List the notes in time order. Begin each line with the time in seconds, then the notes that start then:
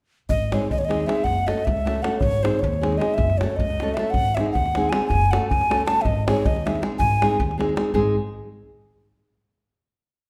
0.29 G#1 D#5, davul low
0.52 G#3 C4 D#4 G#4 C#5, davul high
0.62 davul high
0.70 D#2 D#5, davul low
0.78 C#5, davul high
0.85 G#3 D#5
0.89 C4 D#4 G#4, davul high
1.00 davul high
1.07 G#3 C4 D#4 G#4 E5, davul high
1.17 davul high
1.24 F#1 F#5, davul low
1.47 A3 C#4 F#4 A4 D#5, davul high
1.58 davul high
1.65 C#2 E5, davul low
1.77 davul high
1.85 A3 C#4 F#4 A4, davul high
1.96 davul high
2.03 A3 C#4 F#4 A4 F#5, davul high
2.13 davul high
2.19 G#1 C#5, davul low
2.43 G#3 C4 D#4 G#4 C5, davul high
2.59 C#5, davul low
2.64 D#2
2.73 davul high
2.81 G#3 C4 D#4 G#4, davul high
2.92 davul high
2.98 G#3 C4 D#4 G#4 D#5, davul high
3.10 davul high
3.14 F#1 E5
3.18 davul low
3.30 davul high
3.38 A3 C#4 C#5, davul high
3.43 F#4 A4
3.56 C#2 D#5, davul low
3.70 davul high
3.80 A3 C#4 F#4 A4, davul high
3.88 davul high
3.94 A3 E5, davul high
3.98 C#4 F#4 A4
4.05 davul high
4.10 G#1 F#5, davul low
4.35 G#3 E5, davul high
4.39 C4 D#4 G#4
4.46 davul high
4.52 D#2 F#5, davul low
4.66 davul high
4.75 G#3 C4 D#4 G#4, davul high
4.89 G#3 C4 G#5, davul high
4.94 D#4 G#4
5.02 davul high
5.07 F#1 G#5, davul low
5.31 A3 C#4 F#4 A4 F#5, davul high
5.48 C#2 G#5, davul low
5.61 davul high
5.70 A3 C#4 F#4 A4, davul high
5.80 davul high
5.86 A3 C#4 F#4 A4 A5, davul high
5.97 davul high
6.01 D#5 E5, davul low
6.05 G#1
6.27 G#3 C4 D#4 G#4 C#5, davul high
6.37 davul high
6.45 D#2 D#5, davul low
6.56 davul high
6.65 G#3 C4 D#4 G#4 E5, davul high
6.75 davul high
6.82 G#3 C4 D#4 G#4, davul high
6.92 davul high
6.99 G#1 G#5, davul low
7.11 davul high
7.21 G#3 C4 D#4 G#4, davul high
7.31 davul high
7.40 D#2, davul low
7.51 davul high
7.58 G#3 C4 D#4 G#4, davul high
7.69 davul high
7.76 G#3 C4 D#4 G#4, davul high
7.94 G#1 G#3 C4 D#4 G#4, davul low